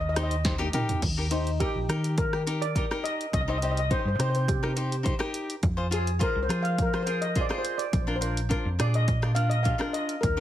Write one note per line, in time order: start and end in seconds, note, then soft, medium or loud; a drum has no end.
0.00 0.67 D#2 medium
0.00 0.08 D#5 medium
0.09 0.13 D#5 medium
0.14 0.34 D#4 medium
0.14 0.34 G4 medium
0.14 0.34 C5 medium
0.14 0.22 D#5 medium
0.14 cross-stick medium
0.14 closed hi-hat medium
0.23 0.32 D#5 medium
0.31 closed hi-hat medium
0.45 0.54 D#4 medium
0.45 0.54 G4 medium
0.45 0.55 C5 medium
0.45 kick medium
0.45 snare medium
0.45 closed hi-hat medium
0.58 0.68 D#4 medium
0.58 0.68 G4 medium
0.58 0.68 A#4 medium
0.58 high tom medium
0.73 1.00 D#4 medium
0.73 1.00 G4 medium
0.73 1.00 A#4 medium
0.73 closed hi-hat medium
0.73 mid tom loud
0.89 closed hi-hat medium
0.89 floor tom medium
1.02 1.61 D#2 medium
1.02 kick medium
1.02 closed hi-hat medium
1.02 crash medium
1.17 1.26 D#4 medium
1.17 1.26 G4 medium
1.17 1.26 A#4 medium
1.30 1.49 D#4 medium
1.30 1.58 D#4 medium
1.30 1.49 G4 medium
1.30 1.49 C5 medium
1.30 closed hi-hat medium
1.47 closed hi-hat medium
1.60 1.78 D#4 medium
1.60 2.14 G4 medium
1.60 1.78 G4 medium
1.60 1.78 A#4 medium
1.60 kick medium
1.60 closed hi-hat medium
1.75 1.86 A#1 medium
1.89 2.82 D#3 loud
1.89 2.15 D#4 medium
1.89 2.15 G4 medium
1.89 2.15 A#4 medium
1.89 cross-stick medium
1.89 closed hi-hat medium
2.04 closed hi-hat medium
2.18 2.63 A#4 medium
2.18 kick loud
2.18 closed hi-hat medium
2.33 2.41 D#4 medium
2.33 2.41 G4 medium
2.33 2.42 A#4 medium
2.33 cross-stick medium
2.47 2.64 D#4 medium
2.47 2.65 G4 medium
2.47 2.65 A#4 medium
2.47 closed hi-hat medium
2.62 3.05 D5 loud
2.62 closed hi-hat medium
2.75 2.85 D#4 medium
2.75 2.85 G4 medium
2.75 2.85 A#4 medium
2.75 kick medium
2.75 closed hi-hat medium
2.91 3.25 D#4 medium
2.91 3.25 G4 medium
2.91 3.25 A#4 medium
2.91 cross-stick medium
3.04 3.33 D#5 medium
3.04 closed hi-hat medium
3.21 closed hi-hat medium
3.33 3.92 C2 loud
3.33 3.40 D#5 loud
3.33 kick medium
3.33 closed hi-hat medium
3.41 3.48 D#5 medium
3.48 3.56 D#4 medium
3.48 3.56 G4 medium
3.48 3.56 C5 medium
3.48 3.56 D#5 medium
3.58 3.64 D#5 medium
3.62 3.80 D#4 medium
3.62 3.80 G4 medium
3.62 3.80 C5 medium
3.62 3.70 D#5 medium
3.62 closed hi-hat medium
3.71 3.78 D#5 medium
3.77 3.86 D#5 medium
3.77 closed hi-hat medium
3.90 4.08 D#4 medium
3.90 4.08 G4 medium
3.90 3.98 C5 medium
3.90 4.08 C5 medium
3.90 kick medium
3.90 closed hi-hat medium
3.99 4.07 C5 medium
4.05 4.16 G2 medium
4.05 4.14 C5 medium
4.15 5.12 C3 medium
4.15 4.19 C5 medium
4.19 4.45 D#4 medium
4.19 4.45 G4 medium
4.19 4.45 C5 medium
4.19 4.29 C5 medium
4.19 cross-stick medium
4.19 closed hi-hat medium
4.30 4.35 C5 medium
4.35 4.44 C5 medium
4.35 closed hi-hat medium
4.48 5.30 G4 medium
4.48 kick loud
4.48 closed hi-hat medium
4.63 4.71 D#4 medium
4.63 4.71 G4 medium
4.63 4.71 A#4 medium
4.63 cross-stick medium
4.76 4.94 D#4 medium
4.76 4.94 G4 medium
4.76 4.95 C5 medium
4.76 closed hi-hat medium
4.92 closed hi-hat medium
5.03 5.13 D#4 medium
5.03 5.13 G4 medium
5.03 5.14 C5 medium
5.03 kick medium
5.03 closed hi-hat medium
5.19 5.54 D#4 medium
5.19 5.54 G4 medium
5.19 5.54 A#4 medium
5.19 cross-stick medium
5.34 closed hi-hat medium
5.50 closed hi-hat medium
5.63 6.22 F2 loud
5.63 kick loud
5.63 closed hi-hat medium
5.77 5.86 F4 medium
5.77 5.86 G#4 medium
5.77 5.86 C5 medium
5.91 6.09 F4 medium
5.91 6.10 G#4 medium
5.91 6.19 G#4 medium
5.91 6.09 C5 medium
5.91 closed hi-hat medium
6.07 closed hi-hat medium
6.19 6.38 F4 medium
6.19 6.38 G#4 medium
6.19 6.39 A#4 medium
6.19 6.38 C5 medium
6.19 kick medium
6.19 closed hi-hat medium
6.36 6.47 C2 loud
6.43 6.51 C5 medium
6.49 7.43 F3 loud
6.49 6.75 F4 medium
6.49 6.76 G#4 medium
6.49 6.76 C5 medium
6.49 cross-stick medium
6.49 closed hi-hat medium
6.62 6.79 F5 loud
6.62 closed hi-hat medium
6.78 7.00 A#4 medium
6.78 kick loud
6.78 closed hi-hat medium
6.93 7.02 F4 medium
6.93 7.02 G#4 medium
6.93 7.02 C5 medium
6.93 cross-stick medium
7.03 7.24 F4 medium
7.03 7.20 C5 medium
7.07 7.25 G#4 medium
7.07 7.25 A#4 medium
7.07 closed hi-hat medium
7.22 7.29 D#5 medium
7.22 closed hi-hat medium
7.35 7.45 F4 medium
7.35 7.45 G#4 medium
7.35 7.45 C5 medium
7.35 kick medium
7.35 closed hi-hat medium
7.41 7.58 D5 medium
7.49 7.84 F4 medium
7.49 7.84 G#4 medium
7.49 7.85 C5 medium
7.49 cross-stick medium
7.58 7.76 C5 medium
7.65 closed hi-hat medium
7.78 8.15 D5 medium
7.78 closed hi-hat medium
7.93 8.52 A#1 loud
7.93 kick loud
7.93 closed hi-hat medium
8.07 8.16 D4 medium
8.07 8.16 F4 medium
8.07 8.16 A#4 medium
8.16 8.41 C5 medium
8.21 8.39 D4 medium
8.21 8.39 F4 medium
8.21 8.39 A#4 medium
8.21 closed hi-hat medium
8.37 closed hi-hat medium
8.49 8.68 D4 medium
8.49 8.68 F4 medium
8.49 8.68 A#4 medium
8.49 kick medium
8.49 closed hi-hat medium
8.65 8.77 F2 medium
8.79 9.73 A#2 loud
8.79 9.05 D4 medium
8.79 9.05 F4 medium
8.79 9.06 G#4 medium
8.79 8.94 D5 medium
8.79 cross-stick medium
8.79 closed hi-hat medium
8.94 9.39 D#5 medium
8.94 closed hi-hat medium
9.08 kick loud
9.08 closed hi-hat medium
9.22 9.31 D4 medium
9.22 9.31 F4 medium
9.22 9.31 A#4 medium
9.22 cross-stick medium
9.35 9.54 D4 medium
9.35 9.54 F4 soft
9.35 9.54 A#4 medium
9.35 9.51 F5 medium
9.35 closed hi-hat medium
9.50 9.65 D#5 medium
9.50 closed hi-hat medium
9.63 9.74 D4 medium
9.63 9.74 F4 medium
9.63 9.74 G4 medium
9.63 9.77 F5 medium
9.63 kick medium
9.63 closed hi-hat medium
9.78 10.14 D4 medium
9.78 10.14 F4 medium
9.78 10.14 A#4 medium
9.78 cross-stick medium
9.93 10.24 D#5 medium
9.93 closed hi-hat medium
10.09 closed hi-hat medium
10.21 10.40 D#2 loud
10.21 10.40 A#4 medium
10.21 kick loud
10.21 closed hi-hat medium
10.37 10.40 D#4 medium